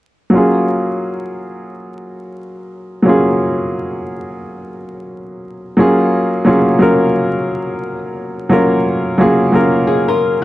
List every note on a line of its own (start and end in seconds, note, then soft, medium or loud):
0.30 3.00 F#3 medium
0.30 3.01 A#3 medium
0.30 3.02 C#4 medium
0.35 3.02 F4 medium
0.35 3.03 G#4 medium
3.03 5.73 F#3 medium
3.03 5.73 A#3 medium
3.03 5.74 C#4 medium
3.08 5.75 F4 medium
3.08 5.76 G#4 medium
5.77 6.36 F#3 medium
5.77 6.37 A#3 medium
5.77 6.37 C#4 medium
5.77 6.38 F4 medium
5.77 6.38 G#4 medium
6.45 6.75 F#3 medium
6.45 6.75 A#3 medium
6.45 6.76 C#4 medium
6.45 6.76 F4 medium
6.45 6.77 G#4 medium
6.79 7.93 F#3 medium
6.79 7.94 A#3 medium
6.79 7.94 C#4 medium
6.79 7.95 F4 medium
6.79 7.95 A#4 medium
8.50 9.09 F#3 medium
8.50 9.10 A#3 medium
8.50 9.10 C#4 medium
8.50 9.10 F4 medium
8.50 9.11 A#4 medium
9.18 9.48 F#3 medium
9.18 9.48 A#3 medium
9.18 9.49 C#4 medium
9.18 9.49 F4 medium
9.18 9.49 G#4 medium
9.52 10.44 F#3 medium
9.52 10.44 A#3 medium
9.52 10.44 C#4 medium
9.52 10.44 F4 medium
9.52 10.44 A#4 medium
9.87 10.08 D#4 medium
9.87 10.08 G#4 medium
10.08 10.41 F4 medium
10.08 10.41 A#4 medium